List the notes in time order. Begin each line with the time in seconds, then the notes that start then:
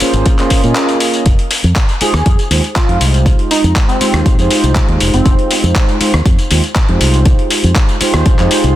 0.00 A#3 C#4 F4 G#4 C5, muted fingered electric bass stroke, open hi-hat, tambourine
0.14 G#1, closed hi-hat, tambourine
0.26 kick, closed hi-hat, tambourine
0.38 A#3 C#4 F4 G#4 C5, clap, closed hi-hat, tambourine
0.50 kick, open hi-hat, tambourine
0.63 A#2 A#3 C#4 F4 G#4 D#5, closed hi-hat, tambourine
0.75 clap, closed hi-hat, tambourine
0.89 closed hi-hat, tambourine
1.00 open hi-hat, tambourine
1.14 closed hi-hat, tambourine
1.26 F1, kick, closed hi-hat, tambourine
1.39 closed hi-hat
1.51 open hi-hat, tambourine
1.64 F2, closed hi-hat, tambourine
1.76 kick, clap, closed hi-hat, tambourine
1.89 closed hi-hat, tambourine
2.01 G#3 D#4 F4 G4 G#4 C5, muted fingered electric bass stroke, open hi-hat, tambourine
2.14 D#2, cross-stick, closed hi-hat, tambourine
2.26 F2, kick, closed hi-hat, tambourine
2.39 closed hi-hat, tambourine
2.50 D#2 G#3 D#4 F4 G4 C5, open hi-hat, tambourine
2.64 closed hi-hat, tambourine
2.76 F4, kick, clap, closed hi-hat, tambourine
2.88 F2 G#3 D#4 F4 G4 C5, closed hi-hat
3.01 C2, open hi-hat, tambourine
3.14 closed hi-hat, tambourine
3.26 kick, closed hi-hat, tambourine
3.39 closed hi-hat
3.51 D#4, open hi-hat, tambourine
3.64 F2, closed hi-hat, tambourine
3.76 kick, clap, closed hi-hat, tambourine
3.88 C4, closed hi-hat, tambourine
4.00 G#3 C4 D#4 F4 G4 C5, muted fingered electric bass stroke, open hi-hat, tambourine
4.14 D#2, cross-stick, closed hi-hat, tambourine
4.26 A#1, kick, closed hi-hat, tambourine
4.37 F2 G#3 D#4 F4 G4 C5, closed hi-hat, tambourine
4.51 open hi-hat, tambourine
4.64 C2, closed hi-hat, tambourine
4.75 kick, clap, closed hi-hat, tambourine
4.88 D#2, closed hi-hat
5.00 F1, open hi-hat, tambourine
5.14 F1 C4, closed hi-hat, tambourine
5.26 F1, kick, closed hi-hat, tambourine
5.39 closed hi-hat
5.51 open hi-hat, tambourine
5.64 F2, closed hi-hat, tambourine
5.76 kick, clap, closed hi-hat, tambourine
5.89 closed hi-hat, tambourine
6.00 G#3 D#4 F4 G4 C5, muted fingered electric bass stroke, open hi-hat, tambourine
6.14 D#2, cross-stick, tambourine
6.25 F2, kick, closed hi-hat, tambourine
6.39 closed hi-hat, tambourine
6.50 D#2 G#3 D#4 F4 G4 C5, open hi-hat, tambourine
6.64 closed hi-hat, tambourine
6.76 kick, clap, closed hi-hat, tambourine
6.88 F2 G#3 D#4 F4 G4 C5, closed hi-hat
7.01 C2, open hi-hat, tambourine
7.14 closed hi-hat, tambourine
7.25 kick, closed hi-hat, tambourine
7.39 closed hi-hat
7.50 open hi-hat, tambourine
7.64 F2, closed hi-hat, tambourine
7.76 kick, clap, closed hi-hat, tambourine
7.89 closed hi-hat, tambourine
8.00 G#3 D#4 F4 G4 C5, muted fingered electric bass stroke, open hi-hat, tambourine
8.14 D#2, cross-stick, tambourine
8.26 A#1, kick, closed hi-hat, tambourine
8.37 F2 G#3 D#4 F4 G4 C5, clap, closed hi-hat, tambourine
8.51 open hi-hat, tambourine
8.64 C2, closed hi-hat, tambourine